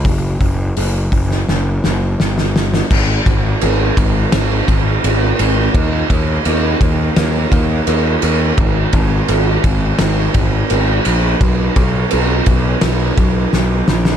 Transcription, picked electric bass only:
X:1
M:4/4
L:1/8
Q:1/4=85
K:G#m
V:1 name="Picked electric bass" clef=bass
F,,, F,,, F,,, F,,, F,,, F,,, =G,,,2 | G,,, G,,, G,,, G,,, G,,, G,,, G,,, G,,, | D,, D,, D,, D,, D,, D,, D,, D,, | G,,, G,,, G,,, G,,, G,,, G,,, G,,, A,,, |
B,,, B,,, B,,, B,,, B,,, B,,, B,,, A,,, |]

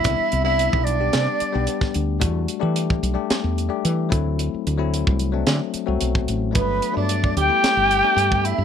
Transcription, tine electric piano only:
X:1
M:4/4
L:1/16
Q:1/4=111
K:G
V:1 name="Tine electric piano"
[G,B,DE]3 [G,B,DE]4 [G,B,DG]4 [G,B,DG]4- [G,B,DG] | [G,A,DF]3 [G,A,DG]4 [G,A,DG]4 [G,A,DG]3 [F,A,CE]2- | [F,A,CE]3 [F,A,CE]4 [F,A,CD]4 [F,A,CF]4- [F,A,CF] | [F,A,B,D]3 [F,A,B,D]4 [G,A,B,E]4 [G,A,B,D]4- [G,A,B,D] |]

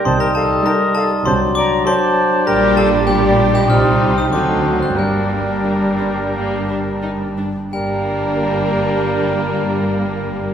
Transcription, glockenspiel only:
X:1
M:4/4
L:1/16
Q:1/4=91
K:Gm
V:1 name="Glockenspiel"
c' b a2 b2 a2 c'2 d'2 c'4 | b2 a2 g3 g f'3 e' d'3 ^f' | g12- g2 z2 | g16 |]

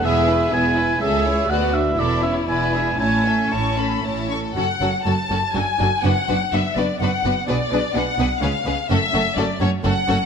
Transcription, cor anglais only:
X:1
M:3/4
L:1/8
Q:1/4=124
K:A
V:1 name="Cor anglais"
e2 g2 e2 | f e d e g2 | g2 a2 z2 | [K:F#m] z6 |
z6 | z6 | z6 |]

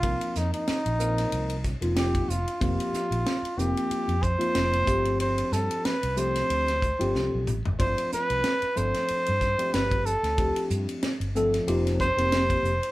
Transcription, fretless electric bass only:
X:1
M:4/4
L:1/16
Q:"Swing 16ths" 1/4=93
K:Gphr
V:1 name="Fretless electric bass" clef=bass
C,, z F,, z2 B,,,3 C,,3 F,,,3 F,,, z | F,,, z2 B,,, z2 F,,, z2 F,,2 z F,,,2 G,,,2- | G,,,2 G,, z2 C,,3 D,,3 G,,, C,, =B,,, =A,,, G,,, | G,,, z2 C,, z2 G,,, z2 G,,2 z G,,,3 D,,- |
D,, z G,, z2 G,,,3 F,,,3 F,,,3 F,,, z |]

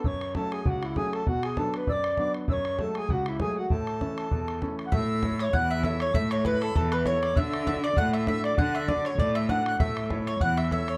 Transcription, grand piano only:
X:1
M:4/4
L:1/8
Q:"Swing" 1/4=197
K:A
V:1 name="Grand piano"
F,,2 [F,A,C]2 C,,2 [F,A,C]2 | B,,2 [F,B,D]2 F,,2 [F,B,D]2 | F,,2 [F,G,A,]2 C,,2 [F,G,A,]2 | A,,2 [E,A,C]2 E,,2 [E,A,C]2 |
A,2 [EAc]2 E,2 [EAc]2 | A,2 [EAc]2 E,2 [EAc]2 | D,2 [DFA]2 A,2 [DFA]2 | D,2 [DFA]2 A,2 [DFA]2 |
A,2 [EAc]2 E,2 [EAc]2 |]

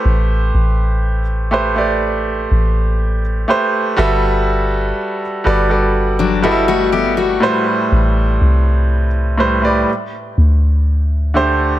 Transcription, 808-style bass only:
X:1
M:4/4
L:1/8
Q:1/4=61
K:Ador
V:1 name="808-style bass" clef=bass
A,,, A,,,4 A,,,2 z | G,,,2 z G,,,4 z | A,,, C,,3 z D,,3 |]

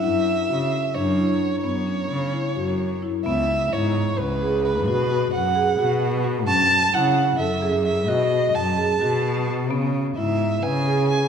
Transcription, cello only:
X:1
M:7/8
L:1/8
Q:1/4=130
K:F#m
V:1 name="Cello" clef=bass
F,,2 C, z F,,3 | F,,2 C, z F,,3 | C,,2 G,,2 C,,3 | B,,2 F,,2 B,,3 |
F,,2 C,2 F,,3 | B,,2 F,,2 B,,3 | C,2 G,,2 C,3 |]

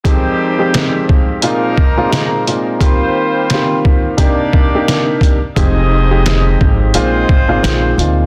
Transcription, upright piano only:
X:1
M:4/4
L:1/16
Q:"Swing 16ths" 1/4=87
K:Fdor
V:1 name="Upright piano"
[F,,A,CEG]3 [F,,A,CEG]4- [F,,A,CEG] [B,,A,CEF]2 z [B,,A,CEF] [B,,A,EF]2 [B,,A,CEF]2 | [E,B,CFG]4 [E,B,CFG]4 [C,B,DEG]3 [C,B,DEG]4 z | [F,,A,CEG]3 [F,,A,CEG]4- [F,,A,CEG] [B,,A,CEF]2 z [B,,A,CEF] [B,,A,CEF]2 [B,,A,CEF]2 |]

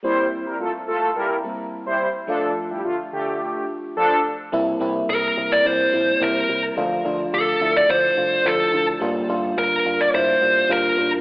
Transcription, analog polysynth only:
X:1
M:4/4
L:1/16
Q:1/4=107
K:Cmix
V:1 name="Analog polysynth"
[G,Ec]2 z [G,EB] [A,FA] z [A,FA]2 [G,EB]2 z3 [G,Ec]2 z | [F,DA]2 z [G,EG] [D,A,F] z [D,A,G]4 z2 [F,DA]2 z2 | z16 | z16 |
z16 |]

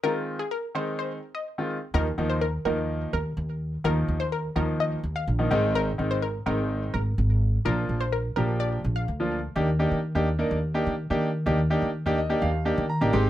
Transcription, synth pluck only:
X:1
M:4/4
L:1/16
Q:1/4=126
K:Eb
V:1 name="Synth pluck"
B z2 A B2 c z c z2 e2 z3 | B z2 c B2 B z3 B z4 z | B z2 c B2 B z e z2 f2 z3 | B z2 c B2 B z3 B z4 z |
B z2 c B2 B z d z2 f2 z3 | z16 | z16 |]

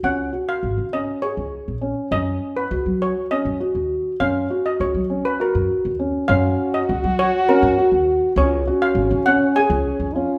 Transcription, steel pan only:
X:1
M:7/8
L:1/16
Q:1/4=101
K:F#
V:1 name="Steel pan"
f3 e3 d2 c4 z2 | d3 B3 c2 d4 z2 | e3 d c3 B A4 z2 | e3 d3 c2 A4 z2 |
c3 e3 f2 g4 z2 |]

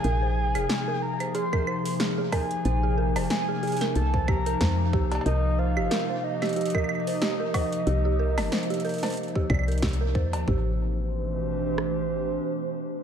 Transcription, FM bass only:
X:1
M:4/4
L:1/16
Q:"Swing 16ths" 1/4=92
K:Clyd
V:1 name="FM bass" clef=bass
_B,,,3 =F,,, z12 | _B,,,3 =F,,, z4 C,,4 =F,,2 C,,2 | C,,3 G,,, z12 | C,,3 G,,, z6 C,,2 C,,2 =F,, _E,, |
A,,,12 z4 |]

